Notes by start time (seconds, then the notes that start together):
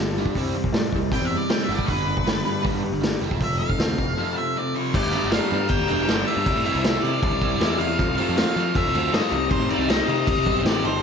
Already playing: G1 G2 G3 D4
0.00 D3
0.17 G2 D3 G3, snare
0.26 kick
0.35 C2 C3 G3 C4, kick, open hi-hat
0.54 C3 G3 C4
0.64 kick
0.73 A2 C3 G3 D4, snare, open hi-hat
0.92 C2 C3 G3, kick
0.96 G3
1.12 C3 G3 C4 G5, kick, open hi-hat
1.21 E2 E5
1.31 C3 G3
1.37 D5
1.49 C3 G3 D4 G5, snare, open hi-hat
1.63 E5
1.68 G1 G2 D3 G3, snare
1.74 D5
1.79 kick
1.86 G1 G2 D3 G3 B4, kick, open hi-hat
2.07 G2 D3 B3
2.17 kick
2.26 G1 G2 D3 D4, snare, open hi-hat
2.45 G2 D3 G3
2.63 G2 D3 G3 B3, kick, open hi-hat
2.75 G2
2.82 G2 D3 G3
2.92 G1
3.01 G2 D3 D4, snare, open hi-hat
3.21 F1 F2 C3 F3
3.31 kick
3.41 F2 C3 E5, kick, open hi-hat
3.58 F2 C3 A3 F5
3.70 kick
3.79 D2 F2 C3 C4, snare, open hi-hat
3.98 F1 F2 C3 F3, kick
4.17 F2 C3 F3 A3
4.37 F2 C3 F3 E5
4.57 F2 C3 C4 D5
4.75 F2 C3 F3 C5 D5
4.93 G1 G2 D3 G3 B3 D4 G4 D5, kick, crash
5.04 D2
5.12 D3 G3 B3 D4 G4, crash
5.16 G3
5.24 G1
5.31 D3 G3 B3 D4 F5, snare, crash
5.36 G4
5.50 G2 G3 B3 D4 G4, crash
5.68 G1 G5, kick, crash
5.79 D2
5.89 E1 D3 G3 B3 D4 G5, crash
6.07 G1 G2 D3 G3 B3 D4 G4, snare, crash
6.11 D4
6.27 G3 B3 D4 G4 E5, crash
6.37 G2
6.45 C2 C3 E3 G3 D4 E4, kick, crash
6.55 A2
6.63 C3 G3 C4 D4 E4 E5, crash
6.75 C2
6.81 C3 E3 G3 C4 D4 E4, snare, crash
7.02 C3 G3 D4 E4 D5, crash
7.23 C2, kick, crash
7.33 C2
7.41 C3 G3 C4 E4, kick, crash
7.59 E2 C3 E3 G3 C4 D4 E4, snare, crash
7.78 G3 D4 E4 F5, crash
7.98 F2 C3 F3 A3 C4 F4, kick, crash
8.10 C2
8.16 F3 A3 C4 F4 F5, crash
8.29 F2
8.35 F3 A3 C4 F4 F5, snare, crash
8.54 F3 A3 C4 F4, crash
8.75 F2 E5, kick, crash
8.86 C2
8.94 D2 F3 A3 C4 F4, crash
9.12 F2 G2 C3 F3 A3 C4 F4 D#5, snare, crash
9.30 C2 C3 D#3 G3 C4 G4, crash
9.50 C3 D#3 G3 C4 G4 C5, kick, crash
9.60 A2
9.68 C3 G3 C4 D#4 G4 D5, crash
9.79 C2
9.88 C3 D#3 G3 C4 D#4 G4 D#5, snare, crash
10.06 C3 G3 C4 G4 D#5, crash
10.27 C2, kick, crash
10.38 C2
10.45 B1 C3 G3 C4 D#4, kick, crash
10.63 A1 C3 D#3 G3 C4 D#4 G4 D5 G5, snare, crash
10.83 G1 G3 C4 G4 C5 A5, crash